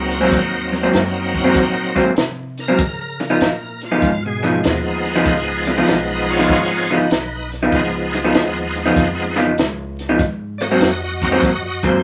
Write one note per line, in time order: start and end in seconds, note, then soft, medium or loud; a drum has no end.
0.00 0.30 C#2 medium
0.00 0.31 F#3 medium
0.00 0.32 A#3 medium
0.00 0.31 C4 medium
0.00 0.32 D#4 medium
0.11 snare soft
0.11 closed hi-hat medium
0.21 0.38 G#2 medium
0.21 0.38 F#3 medium
0.21 0.38 A#3 medium
0.21 0.38 C4 medium
0.31 0.92 D#2 medium
0.31 2.05 F#3 medium
0.31 2.06 A#3 medium
0.31 2.05 C4 medium
0.31 2.06 D#4 medium
0.31 kick loud
0.31 snare soft
0.31 closed hi-hat medium
0.72 muted clean electric guitar stroke medium
0.72 snare soft
0.72 closed hi-hat medium
0.83 1.00 G#2 medium
0.83 1.00 F#3 medium
0.83 1.00 A#3 medium
0.83 1.00 C4 medium
0.93 1.54 F#2 medium
0.93 snare loud
0.93 closed hi-hat medium
1.34 kick medium
1.34 snare soft
1.34 closed hi-hat medium
1.44 1.62 G#2 medium
1.44 1.62 F#3 medium
1.44 1.62 A#3 medium
1.44 1.61 C4 medium
1.54 2.15 A#2 medium
1.54 kick loud
1.54 snare soft
1.54 closed hi-hat medium
1.95 2.10 G#2 medium
1.95 2.10 F#3 medium
1.95 2.10 A#3 medium
1.95 2.10 C4 loud
1.95 kick medium
1.95 snare soft
1.95 closed hi-hat medium
2.16 2.77 C3 medium
2.16 snare loud
2.16 closed hi-hat medium
2.58 2.99 A#4 medium
2.58 snare soft
2.58 closed hi-hat medium
2.68 2.80 G#2 medium
2.68 2.80 F#3 medium
2.68 2.79 A#3 medium
2.68 2.79 C4 medium
2.78 3.39 C#3 medium
2.78 kick loud
2.78 snare soft
2.78 closed hi-hat medium
3.01 3.21 A#4 medium
3.20 3.82 A#4 medium
3.20 muted clean electric guitar stroke soft
3.20 snare soft
3.20 closed hi-hat medium
3.30 3.48 C#3 medium
3.30 3.47 F3 medium
3.30 3.47 B3 medium
3.30 3.47 D#4 loud
3.41 4.01 A#2 medium
3.41 snare loud
3.41 closed hi-hat medium
3.81 4.24 F4 medium
3.81 snare soft
3.81 closed hi-hat medium
3.92 4.09 C#3 medium
3.92 4.09 F3 medium
3.92 4.09 B3 medium
3.92 4.09 D#4 medium
4.02 4.62 G#2 medium
4.02 kick loud
4.02 snare soft
4.02 closed hi-hat medium
4.25 4.82 B2 medium
4.25 4.62 G#3 loud
4.43 4.57 C#3 medium
4.43 4.57 F3 medium
4.43 4.57 B3 medium
4.43 4.57 D#4 medium
4.43 snare soft
4.43 closed hi-hat medium
4.63 5.25 D#2 medium
4.63 5.24 F3 medium
4.63 5.24 G#3 medium
4.63 5.24 B3 medium
4.63 5.25 D#4 medium
4.63 snare loud
4.63 closed hi-hat medium
5.05 snare soft
5.05 closed hi-hat medium
5.16 5.33 C#3 medium
5.16 5.33 F3 medium
5.16 5.33 B3 medium
5.16 5.32 D#4 loud
5.25 5.86 C#2 medium
5.25 6.99 F3 medium
5.25 6.99 G#3 medium
5.25 6.99 B3 medium
5.25 6.91 D#4 medium
5.25 kick loud
5.25 snare soft
5.25 closed hi-hat medium
5.65 5.88 B4 medium
5.65 5.71 D5 medium
5.65 muted clean electric guitar stroke soft
5.65 snare soft
5.65 closed hi-hat medium
5.70 5.89 D#5 medium
5.78 5.95 C#3 medium
5.78 5.95 F3 medium
5.78 5.94 B3 medium
5.78 5.94 D#4 medium
5.87 6.48 B1 medium
5.87 6.08 B4 medium
5.87 6.09 D#5 loud
5.87 snare loud
5.87 closed hi-hat medium
6.10 6.29 B4 medium
6.10 6.30 D#5 medium
6.29 6.48 F4 medium
6.29 6.49 C#5 loud
6.29 snare soft
6.29 closed hi-hat medium
6.39 6.56 C#3 medium
6.39 6.56 F3 medium
6.39 6.56 B3 medium
6.39 6.56 D#4 medium
6.49 7.09 G#1 medium
6.49 6.69 F4 medium
6.49 6.70 C#5 medium
6.49 kick loud
6.49 snare soft
6.49 closed hi-hat medium
6.71 6.90 F4 medium
6.71 6.91 C#5 medium
6.90 7.04 C#3 medium
6.90 7.05 F3 medium
6.90 7.05 B3 medium
6.90 7.05 D#4 loud
6.90 7.49 D#4 medium
6.90 7.52 B4 medium
6.90 snare soft
6.90 closed hi-hat medium
7.11 7.71 B1 medium
7.11 snare loud
7.11 closed hi-hat medium
7.52 snare soft
7.52 closed hi-hat medium
7.63 7.80 C#3 medium
7.63 7.80 F3 medium
7.63 7.80 B3 medium
7.63 7.79 D#4 medium
7.72 8.33 C#2 medium
7.72 9.46 F3 medium
7.72 9.46 G#3 medium
7.72 9.46 B3 medium
7.72 9.46 D#4 medium
7.72 kick loud
7.72 snare soft
7.72 closed hi-hat medium
8.14 muted clean electric guitar stroke medium
8.14 snare soft
8.14 closed hi-hat medium
8.24 8.41 C#3 medium
8.24 8.41 F3 medium
8.24 8.41 B3 medium
8.24 8.41 D#4 medium
8.34 8.94 D#2 medium
8.34 snare loud
8.34 closed hi-hat medium
8.76 snare soft
8.76 closed hi-hat medium
8.86 9.03 C#3 medium
8.86 9.03 F3 medium
8.86 9.03 B3 medium
8.86 9.02 D#4 medium
8.96 9.56 F2 medium
8.96 kick loud
8.96 snare soft
8.96 closed hi-hat medium
9.36 9.50 C#3 medium
9.36 9.50 F3 medium
9.36 9.51 B3 loud
9.36 9.51 D#4 loud
9.36 snare soft
9.36 closed hi-hat medium
9.58 10.18 C#2 loud
9.58 snare loud
9.58 closed hi-hat medium
9.99 snare soft
9.99 closed hi-hat medium
10.09 10.20 C#3 medium
10.09 10.20 F3 medium
10.09 10.20 B3 medium
10.09 10.20 D#4 loud
10.19 10.79 G#2 medium
10.19 kick loud
10.19 snare soft
10.19 closed hi-hat medium
10.58 10.81 F#4 medium
10.58 10.63 D5 medium
10.58 muted clean electric guitar stroke soft
10.58 snare soft
10.58 closed hi-hat medium
10.62 10.82 D#5 medium
10.71 10.88 G#2 medium
10.71 10.88 F#3 medium
10.71 10.88 A#3 medium
10.71 10.88 C4 loud
10.80 11.41 F2 medium
10.80 11.01 F#4 medium
10.80 11.02 D#5 medium
10.80 snare loud
10.80 closed hi-hat medium
11.03 11.22 F#4 medium
11.03 11.23 D#5 medium
11.22 11.41 F#3 medium
11.22 11.41 A#3 medium
11.22 11.41 C4 medium
11.22 11.41 D#4 medium
11.22 11.42 F#4 medium
11.22 11.43 D#5 medium
11.22 kick medium
11.22 snare soft
11.22 closed hi-hat medium
11.32 11.49 G#2 medium
11.32 11.49 F#3 medium
11.32 11.49 A#3 medium
11.32 11.49 C4 loud
11.42 12.02 F#2 medium
11.42 11.63 F#4 medium
11.42 11.64 D#5 medium
11.42 kick loud
11.42 snare soft
11.42 closed hi-hat medium
11.65 11.83 F#4 medium
11.65 11.84 D#5 medium
11.83 11.97 G#2 medium
11.83 11.97 F#3 medium
11.83 11.97 A#3 medium
11.83 11.98 C4 medium
11.83 12.03 C5 medium
11.83 kick medium
11.83 snare soft
11.83 closed hi-hat medium